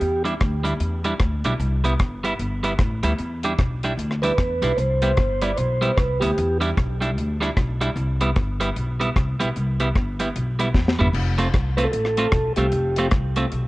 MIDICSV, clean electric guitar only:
0, 0, Header, 1, 2, 480
1, 0, Start_track
1, 0, Key_signature, 0, "major"
1, 0, Tempo, 397351
1, 12, Time_signature, 4, 2, 24, 8
1, 16523, End_track
2, 0, Start_track
2, 0, Title_t, "Clean electric guitar"
2, 0, Program_c, 0, 27
2, 295, Note_on_c, 0, 55, 80
2, 305, Note_on_c, 0, 62, 78
2, 314, Note_on_c, 0, 64, 83
2, 398, Note_off_c, 0, 55, 0
2, 403, Note_off_c, 0, 62, 0
2, 407, Note_off_c, 0, 64, 0
2, 772, Note_on_c, 0, 55, 85
2, 778, Note_on_c, 0, 62, 77
2, 786, Note_on_c, 0, 64, 87
2, 877, Note_off_c, 0, 55, 0
2, 880, Note_off_c, 0, 62, 0
2, 884, Note_off_c, 0, 64, 0
2, 1266, Note_on_c, 0, 55, 85
2, 1274, Note_on_c, 0, 62, 92
2, 1277, Note_on_c, 0, 64, 86
2, 1364, Note_off_c, 0, 55, 0
2, 1368, Note_off_c, 0, 62, 0
2, 1370, Note_off_c, 0, 64, 0
2, 1753, Note_on_c, 0, 55, 86
2, 1757, Note_on_c, 0, 62, 87
2, 1763, Note_on_c, 0, 64, 94
2, 1848, Note_off_c, 0, 55, 0
2, 1850, Note_off_c, 0, 62, 0
2, 1853, Note_off_c, 0, 64, 0
2, 2226, Note_on_c, 0, 55, 83
2, 2235, Note_on_c, 0, 59, 90
2, 2237, Note_on_c, 0, 64, 90
2, 2325, Note_off_c, 0, 55, 0
2, 2329, Note_off_c, 0, 59, 0
2, 2330, Note_off_c, 0, 64, 0
2, 2704, Note_on_c, 0, 55, 85
2, 2714, Note_on_c, 0, 59, 91
2, 2723, Note_on_c, 0, 64, 98
2, 2804, Note_off_c, 0, 55, 0
2, 2809, Note_off_c, 0, 59, 0
2, 2814, Note_off_c, 0, 64, 0
2, 3180, Note_on_c, 0, 55, 80
2, 3190, Note_on_c, 0, 59, 90
2, 3196, Note_on_c, 0, 64, 90
2, 3282, Note_off_c, 0, 55, 0
2, 3287, Note_off_c, 0, 59, 0
2, 3290, Note_off_c, 0, 64, 0
2, 3660, Note_on_c, 0, 55, 82
2, 3670, Note_on_c, 0, 59, 82
2, 3673, Note_on_c, 0, 64, 90
2, 3763, Note_off_c, 0, 55, 0
2, 3768, Note_off_c, 0, 59, 0
2, 3769, Note_off_c, 0, 64, 0
2, 4159, Note_on_c, 0, 55, 78
2, 4161, Note_on_c, 0, 62, 85
2, 4169, Note_on_c, 0, 64, 76
2, 4252, Note_off_c, 0, 55, 0
2, 4254, Note_off_c, 0, 62, 0
2, 4257, Note_off_c, 0, 64, 0
2, 4637, Note_on_c, 0, 55, 75
2, 4643, Note_on_c, 0, 62, 89
2, 4650, Note_on_c, 0, 64, 90
2, 4732, Note_off_c, 0, 55, 0
2, 4735, Note_off_c, 0, 62, 0
2, 4738, Note_off_c, 0, 64, 0
2, 5110, Note_on_c, 0, 55, 77
2, 5117, Note_on_c, 0, 62, 82
2, 5125, Note_on_c, 0, 64, 92
2, 5208, Note_off_c, 0, 55, 0
2, 5212, Note_off_c, 0, 62, 0
2, 5216, Note_off_c, 0, 64, 0
2, 5587, Note_on_c, 0, 55, 85
2, 5600, Note_on_c, 0, 62, 95
2, 5605, Note_on_c, 0, 64, 98
2, 5687, Note_off_c, 0, 55, 0
2, 5694, Note_off_c, 0, 62, 0
2, 5696, Note_off_c, 0, 64, 0
2, 6069, Note_on_c, 0, 55, 81
2, 6072, Note_on_c, 0, 59, 86
2, 6079, Note_on_c, 0, 64, 84
2, 6168, Note_off_c, 0, 55, 0
2, 6170, Note_off_c, 0, 59, 0
2, 6173, Note_off_c, 0, 64, 0
2, 6546, Note_on_c, 0, 55, 78
2, 6549, Note_on_c, 0, 59, 78
2, 6560, Note_on_c, 0, 64, 87
2, 6647, Note_off_c, 0, 55, 0
2, 6649, Note_off_c, 0, 59, 0
2, 6654, Note_off_c, 0, 64, 0
2, 7023, Note_on_c, 0, 55, 93
2, 7029, Note_on_c, 0, 59, 88
2, 7036, Note_on_c, 0, 64, 90
2, 7126, Note_off_c, 0, 55, 0
2, 7129, Note_off_c, 0, 59, 0
2, 7133, Note_off_c, 0, 64, 0
2, 7501, Note_on_c, 0, 55, 83
2, 7513, Note_on_c, 0, 59, 90
2, 7520, Note_on_c, 0, 64, 86
2, 7605, Note_off_c, 0, 55, 0
2, 7611, Note_off_c, 0, 59, 0
2, 7615, Note_off_c, 0, 64, 0
2, 7979, Note_on_c, 0, 55, 70
2, 7983, Note_on_c, 0, 62, 84
2, 7995, Note_on_c, 0, 64, 87
2, 8084, Note_off_c, 0, 55, 0
2, 8086, Note_off_c, 0, 62, 0
2, 8092, Note_off_c, 0, 64, 0
2, 8466, Note_on_c, 0, 55, 75
2, 8477, Note_on_c, 0, 62, 87
2, 8485, Note_on_c, 0, 64, 88
2, 8568, Note_off_c, 0, 55, 0
2, 8573, Note_off_c, 0, 62, 0
2, 8577, Note_off_c, 0, 64, 0
2, 8948, Note_on_c, 0, 55, 83
2, 8959, Note_on_c, 0, 62, 94
2, 8966, Note_on_c, 0, 64, 91
2, 9049, Note_off_c, 0, 55, 0
2, 9054, Note_off_c, 0, 62, 0
2, 9058, Note_off_c, 0, 64, 0
2, 9433, Note_on_c, 0, 55, 85
2, 9438, Note_on_c, 0, 62, 99
2, 9445, Note_on_c, 0, 64, 95
2, 9531, Note_off_c, 0, 55, 0
2, 9534, Note_off_c, 0, 62, 0
2, 9537, Note_off_c, 0, 64, 0
2, 9918, Note_on_c, 0, 55, 91
2, 9923, Note_on_c, 0, 59, 89
2, 9928, Note_on_c, 0, 64, 90
2, 10014, Note_off_c, 0, 55, 0
2, 10016, Note_off_c, 0, 59, 0
2, 10019, Note_off_c, 0, 64, 0
2, 10392, Note_on_c, 0, 55, 84
2, 10397, Note_on_c, 0, 59, 99
2, 10409, Note_on_c, 0, 64, 94
2, 10491, Note_off_c, 0, 55, 0
2, 10493, Note_off_c, 0, 59, 0
2, 10499, Note_off_c, 0, 64, 0
2, 10872, Note_on_c, 0, 55, 75
2, 10882, Note_on_c, 0, 59, 92
2, 10888, Note_on_c, 0, 64, 101
2, 10970, Note_off_c, 0, 55, 0
2, 10976, Note_off_c, 0, 59, 0
2, 10979, Note_off_c, 0, 64, 0
2, 11354, Note_on_c, 0, 55, 84
2, 11361, Note_on_c, 0, 59, 90
2, 11368, Note_on_c, 0, 64, 101
2, 11451, Note_off_c, 0, 55, 0
2, 11455, Note_off_c, 0, 59, 0
2, 11458, Note_off_c, 0, 64, 0
2, 11841, Note_on_c, 0, 55, 70
2, 11844, Note_on_c, 0, 59, 81
2, 11852, Note_on_c, 0, 64, 81
2, 11935, Note_off_c, 0, 55, 0
2, 11936, Note_off_c, 0, 59, 0
2, 11940, Note_off_c, 0, 64, 0
2, 12318, Note_on_c, 0, 55, 72
2, 12326, Note_on_c, 0, 59, 84
2, 12332, Note_on_c, 0, 64, 84
2, 12413, Note_off_c, 0, 55, 0
2, 12417, Note_off_c, 0, 59, 0
2, 12420, Note_off_c, 0, 64, 0
2, 12795, Note_on_c, 0, 55, 83
2, 12802, Note_on_c, 0, 59, 79
2, 12811, Note_on_c, 0, 64, 98
2, 12892, Note_off_c, 0, 55, 0
2, 12895, Note_off_c, 0, 59, 0
2, 12900, Note_off_c, 0, 64, 0
2, 13277, Note_on_c, 0, 55, 80
2, 13289, Note_on_c, 0, 59, 86
2, 13294, Note_on_c, 0, 64, 90
2, 13372, Note_off_c, 0, 55, 0
2, 13378, Note_off_c, 0, 59, 0
2, 13380, Note_off_c, 0, 64, 0
2, 13751, Note_on_c, 0, 57, 79
2, 13759, Note_on_c, 0, 60, 82
2, 13770, Note_on_c, 0, 65, 82
2, 13849, Note_off_c, 0, 57, 0
2, 13853, Note_off_c, 0, 60, 0
2, 13858, Note_off_c, 0, 65, 0
2, 14225, Note_on_c, 0, 57, 76
2, 14233, Note_on_c, 0, 60, 83
2, 14238, Note_on_c, 0, 65, 88
2, 14325, Note_off_c, 0, 57, 0
2, 14329, Note_off_c, 0, 60, 0
2, 14332, Note_off_c, 0, 65, 0
2, 14713, Note_on_c, 0, 57, 82
2, 14718, Note_on_c, 0, 60, 94
2, 14726, Note_on_c, 0, 65, 96
2, 14809, Note_off_c, 0, 57, 0
2, 14812, Note_off_c, 0, 60, 0
2, 14816, Note_off_c, 0, 65, 0
2, 15192, Note_on_c, 0, 57, 90
2, 15198, Note_on_c, 0, 60, 90
2, 15201, Note_on_c, 0, 65, 93
2, 15288, Note_off_c, 0, 57, 0
2, 15291, Note_off_c, 0, 60, 0
2, 15293, Note_off_c, 0, 65, 0
2, 15686, Note_on_c, 0, 57, 77
2, 15689, Note_on_c, 0, 60, 87
2, 15698, Note_on_c, 0, 65, 88
2, 15775, Note_off_c, 0, 57, 0
2, 15776, Note_off_c, 0, 60, 0
2, 15781, Note_off_c, 0, 65, 0
2, 16147, Note_on_c, 0, 57, 77
2, 16155, Note_on_c, 0, 60, 86
2, 16162, Note_on_c, 0, 65, 80
2, 16245, Note_off_c, 0, 57, 0
2, 16249, Note_off_c, 0, 60, 0
2, 16252, Note_off_c, 0, 65, 0
2, 16523, End_track
0, 0, End_of_file